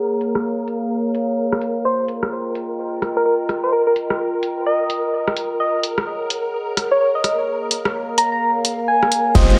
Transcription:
Already playing: A#3 G#4 A#4 C#5
0.05 F5
0.21 closed hi-hat
0.35 cross-stick
0.68 closed hi-hat
1.15 closed hi-hat
1.52 cross-stick
1.61 closed hi-hat
1.85 F4 A#4 C5
2.05 A#4 G5, closed hi-hat
2.23 D#5, cross-stick
2.55 closed hi-hat
3.02 cross-stick, closed hi-hat
3.17 A#4
3.26 A#4
3.49 cross-stick, closed hi-hat
3.64 C5
3.73 A#4
3.87 A#4
3.96 closed hi-hat
4.10 cross-stick
4.43 closed hi-hat
4.66 D#5
4.90 closed hi-hat
5.28 cross-stick
5.37 closed hi-hat
5.60 G#4 D#5
5.73 C#5
5.81 F#5, closed hi-hat
5.98 cross-stick
6.30 closed hi-hat
6.77 cross-stick, closed hi-hat
6.92 C#5
7.01 C#5
7.15 D#5
7.24 A#3 D#5, cross-stick, closed hi-hat
7.60 F5
7.71 closed hi-hat
7.85 cross-stick
8.18 A#5, closed hi-hat
8.32 A#5
8.65 closed hi-hat
8.88 G#5
9.03 cross-stick
9.12 closed hi-hat
9.35 F1 G#3 F4 G4 A#4 C5 D#5, kick, closed hi-hat, crash, downlifter, cabasa
9.50 cabasa

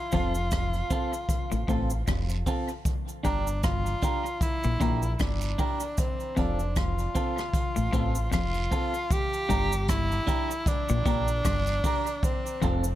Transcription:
Already playing: F4
0.12 F1 F2 C4 F4 A4, kick, closed hi-hat, cabasa
0.35 cabasa
0.51 kick, cross-stick, closed hi-hat, cabasa
0.73 closed hi-hat, cabasa
0.90 C4 F4 A4, kick, closed hi-hat, cabasa
1.13 closed hi-hat, cabasa
1.29 kick, closed hi-hat, cabasa
1.52 A1 A2, closed hi-hat, cabasa
1.68 A1 A2 C4 F4 A4, kick, open hi-hat, cabasa
1.90 muted clean electric guitar stroke, cabasa
2.07 F1 F2, kick, cross-stick, closed hi-hat, cabasa, long guiro
2.29 closed hi-hat, cabasa
2.46 C4 F4 A4, kick, open hi-hat, cabasa
2.69 cabasa
2.85 kick, closed hi-hat, cabasa
3.07 closed hi-hat, cabasa
3.23 G1 G2 D4 G4 A#4, kick, closed hi-hat, cabasa
3.47 cabasa
3.63 F4, kick, cross-stick, closed hi-hat, cabasa
3.86 closed hi-hat, cabasa
4.01 D4 G4 A#4, kick, closed hi-hat, cabasa
4.26 cabasa
4.41 E4, kick, closed hi-hat, cabasa
4.63 A#1 A#2, closed hi-hat, cabasa
4.80 A#1 A#2 D4 G4 A#4, kick, closed hi-hat, cabasa
5.02 muted clean electric guitar stroke, cabasa
5.15 E4
5.19 G1 G2 D4, kick, cross-stick, closed hi-hat, cabasa, long guiro
5.41 closed hi-hat, cabasa
5.58 D4 G4 A#4, kick, open hi-hat, cabasa
5.80 cabasa
5.97 C4, kick, closed hi-hat, cabasa
6.20 closed hi-hat, cabasa
6.37 F1 F2 C4 D4 F4 A4, kick, closed hi-hat, cabasa
6.59 closed hi-hat, cabasa
6.76 F4, kick, cross-stick, closed hi-hat, cabasa
6.99 closed hi-hat, cabasa
7.15 C4 F4 A4, kick, closed hi-hat, cabasa
7.38 cross-stick, closed hi-hat, cabasa
7.54 kick, closed hi-hat, cabasa
7.76 A1 A2, closed hi-hat, cabasa
7.93 A1 A2 C4 F4 A4, kick, closed hi-hat, cabasa
8.15 cabasa
8.31 F1 F2 F4, kick, cross-stick, closed hi-hat, cabasa, long guiro
8.54 closed hi-hat, cabasa
8.71 C4 F4 A4, kick, open hi-hat, cabasa
8.94 cabasa
9.10 G4, kick, closed hi-hat, cabasa
9.33 closed hi-hat, cabasa
9.49 G1 G2 D4 G4 A#4, kick, closed hi-hat, cabasa
9.72 cabasa
9.88 E4, kick, cross-stick, closed hi-hat, cabasa
10.12 closed hi-hat, cabasa
10.27 D4 G4 A#4, kick, closed hi-hat, cabasa
10.51 cabasa
10.66 D4, kick, closed hi-hat, cabasa
10.89 A#1 A#2, closed hi-hat, cabasa
11.05 A#1 A#2 D4 G4 A#4, kick, closed hi-hat, cabasa
11.28 cabasa
11.44 G1 G2, kick, cross-stick, closed hi-hat, cabasa, long guiro
11.66 closed hi-hat, cabasa
11.84 D4 G4 A#4, kick, open hi-hat, cabasa
12.07 closed hi-hat, cabasa
12.23 C4, kick, closed hi-hat, cabasa
12.45 closed hi-hat, cabasa
12.62 F1 F2 C4 F4 A4, kick, closed hi-hat, cabasa
12.84 closed hi-hat, cabasa

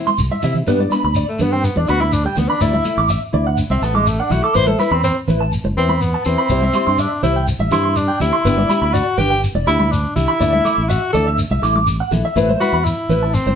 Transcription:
Already playing: C4 E4
0.06 C6, high conga, shekere
0.18 C2, high conga, shekere
0.31 E5, high conga
0.42 C3 C4 E4 E5, low conga, shekere
0.54 low conga, shekere
0.67 G2 G3 B3 D4 B4, shekere
0.79 D5, high conga
0.90 B3 D4 B5, high conga, shekere
1.04 D2 B5
1.14 D5, shekere
1.28 A3
1.38 G2 B3 D4 B4, low conga, shekere
1.53 C4 G5
1.64 B3, shekere
1.76 E2 D4 D5, high conga
1.87 D2 B3 D4 F#4 B5, shekere
2.01 E4 B5, high conga
2.12 D4, shekere
2.26 G3 G5
2.36 D2 B3 D4, low conga, shekere
2.49 D4 B5
2.61 D2 F#3 A3 E4 D5, shekere
2.73 E5, high conga
2.84 A3 E4, high conga, shekere
2.98 A1 D6
3.09 E5, shekere
3.33 D2 E4 D5, low conga
3.47 F#5
3.57 shekere
3.70 C2 C4 E5, high conga
3.82 A1 A3 B3 A5, shekere
3.94 G#3 D6, high conga
4.07 A3, shekere
4.20 D4 F#5
4.30 B1 A3 E4 F#4, low conga, shekere
4.43 A4 D6
4.55 A1 C4 E4 B4 C5, shekere
4.67 A4 C5, high conga
4.79 E4 B4 B5, high conga, shekere
4.91 E2 C4 B5
5.04 C4 C5, shekere
5.28 A1 E4 B4, low conga, shekere
5.41 A5
5.53 shekere
5.64 F#1, muted clean electric guitar stroke, high conga
5.77 E2 C4 E4 B4
5.89 B5, high conga
6.01 B3, shekere
6.14 A5
6.25 E2 C4 E4 B4, shekere
6.38 B5
6.49 C2 G3 C4 E4 G4 C5, shekere
6.61 E5, high conga
6.73 C4 E4 G4 C6, high conga, shekere
6.87 G2 C6
6.98 D4 E5, shekere
7.23 C2 C4 E4 G4 C5, low conga, shekere
7.36 G5
7.47 shekere
7.59 A1 E5, high conga
7.71 G2 C4 E4 G4 C6, low conga, shekere
7.84 C6
7.96 D4, shekere
8.08 G5
8.20 D2 C4 E4 G4, low conga, shekere
8.33 C6
8.45 G1 B3 D4 G4 B4, shekere
8.58 D5, high conga
8.69 D4 G4 B5, high conga, shekere
8.82 D2 B5
8.94 F#4 D5, shekere
9.18 G1 D4 G4 B4, low conga, shekere
9.30 G5
9.44 shekere
9.55 E1 D5, high conga
9.67 D2 D4 E4 G4 B5, shekere
9.79 B5, high conga
9.92 D4, shekere
10.16 C2 D4 E4 G4, low conga, shekere
10.28 B5
10.40 D2 A3 E4 A4 D5, muted steel-string acoustic guitar stroke, shekere
10.53 E5, high conga
10.65 A3 E4 A4 D6, high conga, shekere
10.78 A1
10.89 F#4 E5, shekere
11.13 D2 A3 E4 A4 D5, low conga, shekere
11.27 E5
11.38 shekere
11.51 C2 E5, high conga
11.62 A1 A3 E4 A4 D6, shekere
11.75 D6, high conga
11.87 shekere
12.00 F#5
12.11 A#1 A3 E4 A4, low conga, shekere
12.25 E5
12.35 A1 A3 C4 E4 B4, shekere
12.49 C5, high conga
12.60 C4 E4 F#4 B4 B5, high conga, shekere
12.73 E2 B5
12.85 E4, shekere
13.09 A1 C4 E4 B4, low conga, shekere
13.23 A5
13.34 C4, shekere
13.46 F#1 C5, high conga

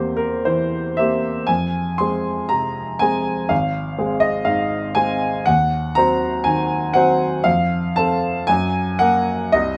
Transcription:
Already playing: E2 A#3 C4 G4 C5
0.17 A#4
0.45 E3 C5
0.97 A#3 C4 G4 E5
1.47 F2 G#5
1.98 G#3 C4 G#4 C6
2.49 C3 A#5
2.99 G#3 C4 G#4 G#5
3.49 G#1 F5
3.98 G#3 C4 G#4
4.20 D#5
4.45 G#2 F5
4.95 G#3 C4 G#4 G#5
5.46 D#2 F#5
5.95 F#3 C4 C5 A#5
6.44 D#3 G#5
6.94 F#3 C4 C5 F#5
7.44 F2 F5
7.96 C4 A4 A5
8.47 F#2 G#5
8.99 A#3 A#4 F#5
9.52 C2 D#5

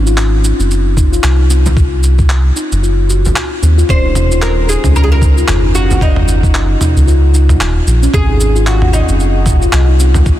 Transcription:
Already playing: G#1
0.06 F4, shaker
0.17 clap, shaker
0.44 D#4, shaker
0.59 F#1 C4, shaker
0.71 shaker
0.97 D#4, kick, shaker
1.12 F4, shaker
1.23 C2, clap, shaker
1.39 D#4
1.50 C4, shaker
1.66 frame drum, shaker
1.77 kick, shaker
2.03 shaker
2.19 kick, shaker
2.29 clap, shaker
2.56 D#4, shaker
2.72 F#1, shaker
2.83 F4, shaker
3.10 F#4, shaker
3.25 frame drum, shaker
3.36 clap, shaker
3.62 D#2 C4, shaker
3.78 F4, shaker
3.89 D#1 C#4 C5, kick, shaker
4.04 D#4
4.15 mid tom, shaker
4.31 F4, shaker
4.42 A#4, clap, shaker
4.68 D#4 G#4, shaker
4.84 C#2 C#4, mid tom, shaker
4.96 A#4, shaker
5.04 G#4
5.12 A#4
5.22 D#4, kick, shaker
5.37 F4, shaker
5.48 F#1, clap, mid tom, shaker
5.64 D#4
5.75 C#4 F#4, shaker
5.90 frame drum, shaker
6.01 D#4, kick, shaker
6.16 mid tom
6.28 shaker
6.43 kick, shaker
6.54 clap, shaker
6.81 D#4, mid tom, shaker
6.96 C#2, shaker
7.07 F4, shaker
7.34 D#4, shaker
7.49 mid tom, frame drum, shaker
7.60 D#1, clap, shaker
7.87 A#1, shaker
8.03 C#4, shaker
8.14 G#1 G#4, kick, mid tom, shaker
8.29 D#4
8.40 shaker
8.56 F4, shaker
8.67 F#4, clap, shaker
8.82 mid tom
8.93 D#4, shaker
9.08 F#1 C4, shaker
9.20 shaker
9.46 D#4, kick, mid tom, shaker
9.61 F4, shaker
9.73 C2, clap, shaker
9.88 D#4
9.99 C4, shaker
10.14 mid tom, frame drum, shaker
10.26 kick, shaker

